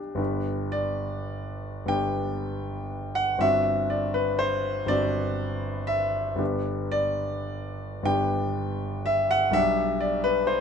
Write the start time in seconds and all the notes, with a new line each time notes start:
Already playing: B1 D4 G4
0.15 G1 B3 D4 G4
0.72 D5
1.86 G1 B3 D4 G4 G5
3.15 F#5
3.38 G1 C4 D4 F#4 E5
3.90 D5
4.14 B4
4.39 C5
4.86 G1 C4 D4 F#4 D5
5.87 E5
6.35 G1 B3 D4 G4
6.92 D5
8.03 G1 B3 D4 G5
8.07 G4
9.06 E5
9.31 F#5
9.51 B1 G3 D4 G4 E5
10.01 D5
10.24 B4
10.47 C5